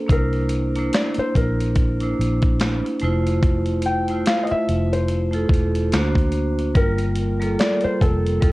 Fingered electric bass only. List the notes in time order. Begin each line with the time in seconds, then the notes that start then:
0.10 C2
1.18 muted fingered electric bass stroke
1.36 A#1
2.19 A#1
3.03 F1
4.51 muted fingered electric bass stroke
4.69 F1
5.50 E1
5.94 D2
6.76 G1
7.84 muted fingered electric bass stroke
8.02 F1
8.43 F1